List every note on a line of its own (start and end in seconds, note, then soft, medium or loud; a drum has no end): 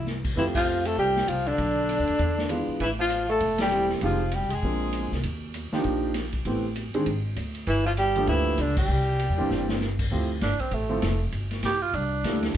0.00 0.34 C2 medium
0.06 snare soft
0.06 hi-hat pedal soft
0.24 kick medium
0.24 crash medium
0.36 0.95 F2 medium
0.36 0.45 E3 medium
0.36 1.21 F3 medium
0.36 1.21 A3 medium
0.36 1.22 C4 medium
0.36 0.46 E4 medium
0.36 1.22 G4 medium
0.36 1.21 E5 medium
0.36 kick soft
0.55 0.88 F3 medium
0.55 0.88 F4 medium
0.55 kick medium
0.55 crash medium
0.66 hi-hat pedal medium
0.85 0.98 A3 medium
0.85 0.98 A4 medium
0.85 ride medium
0.98 1.26 C2 medium
0.98 1.31 G3 medium
0.98 1.30 G4 medium
0.98 kick soft
1.16 snare medium
1.28 1.56 C2 medium
1.28 1.49 F3 medium
1.28 1.49 F4 medium
1.28 hi-hat pedal soft
1.28 ride medium
1.46 2.69 D3 medium
1.46 2.69 D4 medium
1.46 ride soft
1.58 1.96 B1 medium
1.58 kick soft
1.58 ride medium
1.89 hi-hat pedal soft
1.89 ride medium
1.99 2.08 D2 medium
2.07 2.19 D#2 medium
2.07 ride soft
2.19 2.65 E2 medium
2.19 kick soft
2.19 ride medium
2.38 snare soft
2.49 2.80 E3 medium
2.49 2.81 G#3 medium
2.49 2.80 B3 medium
2.49 2.81 D4 medium
2.49 2.81 F4 medium
2.49 hi-hat pedal medium
2.49 ride medium
2.68 muted upright bass stroke soft
2.80 3.38 A1 medium
2.80 2.89 E3 medium
2.80 2.91 E4 medium
2.80 kick soft
2.80 ride medium
2.99 3.27 F3 medium
2.99 3.28 F4 medium
3.10 hi-hat pedal medium
3.10 ride medium
3.29 3.58 A3 medium
3.29 3.59 A4 medium
3.40 3.99 E1 medium
3.40 kick soft
3.40 ride medium
3.58 3.89 G3 medium
3.58 3.89 G4 medium
3.58 snare medium
3.58 ride medium
3.71 4.02 G3 medium
3.71 4.02 A3 medium
3.71 4.01 C4 medium
3.71 4.02 E4 medium
3.71 4.01 G4 medium
3.71 hi-hat pedal medium
3.89 snare soft
4.01 4.40 F1 medium
4.01 4.19 F3 medium
4.01 4.36 F3 medium
4.01 4.19 G#3 medium
4.01 4.19 C4 medium
4.01 4.19 D#4 medium
4.01 4.19 G4 medium
4.01 kick soft
4.01 ride medium
4.05 4.36 F4 medium
4.31 4.53 G3 medium
4.31 4.56 G4 medium
4.31 hi-hat pedal soft
4.31 ride medium
4.43 4.52 C2 medium
4.50 4.62 F2 medium
4.50 5.12 G#3 medium
4.50 5.14 G#4 medium
4.50 ride medium
4.62 5.08 A#1 medium
4.62 5.09 F3 soft
4.62 5.09 A#3 soft
4.62 5.09 C4 soft
4.62 5.09 D4 soft
4.62 5.09 A#4 medium
4.62 kick soft
4.93 hi-hat pedal medium
4.93 ride medium
5.12 5.23 C2 medium
5.12 snare soft
5.23 5.69 D#2 medium
5.23 kick soft
5.23 ride medium
5.54 hi-hat pedal soft
5.54 ride medium
5.72 6.13 F3 medium
5.72 6.13 A#3 medium
5.72 6.13 D4 medium
5.72 6.13 D#4 medium
5.72 6.14 G4 medium
5.72 muted upright bass stroke soft
5.72 snare soft
5.84 6.43 A#1 medium
5.84 kick soft
5.84 ride medium
6.14 snare soft
6.14 hi-hat pedal medium
6.14 ride medium
6.33 kick medium
6.33 ride soft
6.45 6.91 A1 medium
6.45 6.63 E3 medium
6.45 6.63 A3 medium
6.45 6.63 B3 medium
6.45 6.63 C4 medium
6.45 6.63 G4 medium
6.45 kick soft
6.45 ride medium
6.76 hi-hat pedal medium
6.76 ride medium
6.94 7.06 D#3 medium
6.94 7.06 G#3 medium
6.94 7.06 C4 medium
6.94 7.06 D4 medium
6.94 7.06 G#4 medium
6.94 muted upright bass stroke soft
6.94 ride soft
7.06 7.35 G#1 medium
7.06 kick soft
7.06 ride medium
7.36 7.65 D2 medium
7.36 hi-hat pedal medium
7.36 ride medium
7.55 ride soft
7.67 8.25 G1 medium
7.67 7.85 E3 medium
7.67 7.86 E4 medium
7.67 kick soft
7.67 ride medium
7.86 7.91 F3 medium
7.86 7.92 F4 medium
7.97 8.27 G3 medium
7.97 8.27 G4 loud
7.97 hi-hat pedal medium
7.97 ride medium
8.16 8.57 F3 medium
8.16 8.56 A3 medium
8.16 8.57 A#3 medium
8.16 8.57 D4 medium
8.16 8.57 G4 medium
8.16 ride soft
8.27 8.57 D2 medium
8.27 8.61 E3 medium
8.27 8.63 E4 medium
8.27 kick soft
8.27 ride medium
8.58 8.87 C#2 medium
8.58 8.78 D3 medium
8.58 8.78 D4 medium
8.58 hi-hat pedal medium
8.58 ride medium
8.77 9.77 G3 medium
8.77 9.77 G4 medium
8.77 kick medium
8.77 crash medium
8.88 9.27 C2 medium
9.20 hi-hat pedal medium
9.20 ride medium
9.30 9.39 E2 medium
9.38 9.49 A#1 medium
9.38 9.78 E3 medium
9.38 9.78 A#3 medium
9.38 9.79 C4 medium
9.38 9.79 D4 medium
9.38 9.79 G4 medium
9.50 10.08 G1 medium
9.50 snare soft
9.69 snare medium
9.80 snare medium
9.80 hi-hat pedal medium
9.99 kick medium
9.99 crash medium
10.11 10.41 D2 medium
10.11 10.28 F3 medium
10.11 10.28 A3 soft
10.11 10.28 C4 medium
10.11 10.28 E4 medium
10.11 10.28 G4 medium
10.11 kick soft
10.41 10.59 G1 medium
10.41 10.62 D4 medium
10.41 kick soft
10.41 snare medium
10.41 hi-hat pedal medium
10.41 ride medium
10.59 10.76 C4 medium
10.59 muted upright bass stroke soft
10.59 kick soft
10.59 ride soft
10.71 11.01 A1 medium
10.71 11.22 A3 medium
10.71 kick soft
10.71 ride medium
10.89 11.01 F3 medium
10.89 11.01 A3 medium
10.89 11.01 C4 medium
10.89 11.01 E4 medium
10.89 11.01 A4 medium
11.02 11.32 F1 medium
11.02 kick soft
11.02 snare medium
11.02 hi-hat pedal soft
11.02 ride medium
11.32 11.62 G1 medium
11.32 kick soft
11.32 ride medium
11.51 snare soft
11.51 ride soft
11.63 11.93 A#1 medium
11.63 11.83 G4 medium
11.63 kick soft
11.63 snare medium
11.63 hi-hat pedal soft
11.63 ride medium
11.82 11.96 F4 medium
11.93 12.23 C2 medium
11.93 12.43 D4 medium
11.93 kick soft
11.93 ride medium
12.24 12.54 D2 medium
12.24 12.55 G3 medium
12.24 12.55 A#3 medium
12.24 12.55 D4 medium
12.24 12.55 E4 medium
12.24 12.55 A4 medium
12.24 kick soft
12.24 snare medium
12.24 hi-hat pedal soft
12.24 ride medium
12.43 snare soft
12.43 ride soft